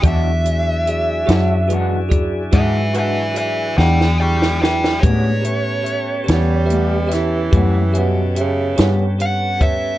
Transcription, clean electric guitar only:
\new Staff \with { instrumentName = "Clean electric guitar" } { \time 12/8 \key a \major \tempo 4. = 48 <e gis d' fis'>8 r4 <gis d' fis'>8 <e gis d' fis'>8 r8 <e gis d' fis'>8 <gis d' fis'>8 r8 <gis d' fis'>8 r4 | <a, g b cis'>8 r4 <g b cis'>8 <a, g b cis'>8 r8 <a, g b cis'>8 <g b cis'>8 r8 <g b cis'>8 r4 | }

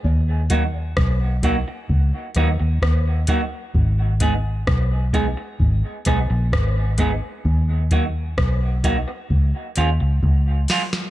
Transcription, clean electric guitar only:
\new Staff \with { instrumentName = "Clean electric guitar" } { \time 4/4 \key ees \minor \tempo 4 = 65 r8 <ges bes ees' ges'>8 r8 <ges bes ees' ges'>8 r8 <ges bes ees' ges'>8 r8 <ges bes ees' ges'>8 | r8 <aes ces' ees' aes'>8 r8 <aes ces' ees' aes'>8 r8 <aes ces' ees' aes'>8 r8 <aes ces' ees' aes'>8 | r8 <ges bes ees' ges'>8 r8 <ges bes ees' ges'>8 r8 <f aes des' f'>8 r8 <f aes des' f'>8 | }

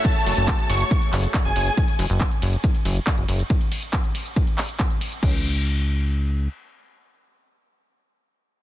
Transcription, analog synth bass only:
\new Staff \with { instrumentName = "Analog synth bass" } { \clef bass \time 4/4 \key fis \dorian \tempo 4 = 139 r8 fis,,16 fis,,16 r8 fis,,16 r8. fis,,16 r8 fis,,16 fis,,16 r16 | r8 fis,,16 fis,,16 r8 fis,,16 r8. fis,,16 r8 fis,,16 fis,,16 r16 | r1 | cis,2. r4 |
r1 | }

